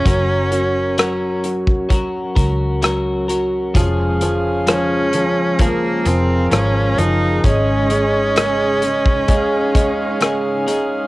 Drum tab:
HH |x-x-x-x-x-x-x-x-|x-x-x-x-x-x-x-x-|x-x-x-x-x-x-x-x-|
SD |----r-------r---|----r-------r---|----r-------r---|
BD |o------oo-o-----|o-------o-------|o------oo-o-----|